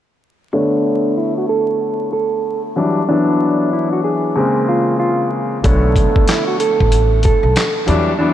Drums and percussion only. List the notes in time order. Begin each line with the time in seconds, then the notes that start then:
5.64 kick, closed hi-hat
5.96 kick, closed hi-hat
6.16 kick
6.28 snare, clap, closed hi-hat
6.60 closed hi-hat
6.80 kick
6.92 closed hi-hat
7.23 kick, closed hi-hat
7.56 snare, clap, closed hi-hat
7.88 closed hi-hat